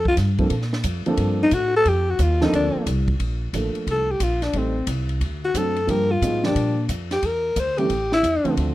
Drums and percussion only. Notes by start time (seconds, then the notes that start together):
0.05 kick
0.17 kick, snare, hi-hat pedal, ride
0.38 kick, ride
0.50 kick, ride
0.62 snare
0.73 snare
0.83 kick, hi-hat pedal, ride
1.06 ride
1.17 kick, ride
1.51 kick, hi-hat pedal, ride
1.85 kick, ride
2.19 kick, hi-hat pedal, ride
2.41 snare
2.53 kick, ride
2.86 kick, hi-hat pedal, ride
3.08 kick, ride
3.20 kick, ride
3.53 kick, hi-hat pedal, ride
3.75 ride
3.87 kick, ride
4.20 kick, hi-hat pedal, ride
4.42 snare, ride
4.53 kick, ride
4.87 kick, hi-hat pedal, ride
5.09 ride
5.21 kick, ride
5.54 kick, hi-hat pedal, ride
5.76 ride
5.88 kick, ride
6.22 kick, hi-hat pedal, ride
6.44 snare
6.55 kick, ride
6.89 kick, hi-hat pedal, ride
7.11 snare, ride
7.23 kick, ride
7.56 kick, hi-hat pedal, ride
7.78 ride
7.90 kick, ride
8.12 snare
8.23 kick, hi-hat pedal, ride
8.45 ride
8.57 kick, ride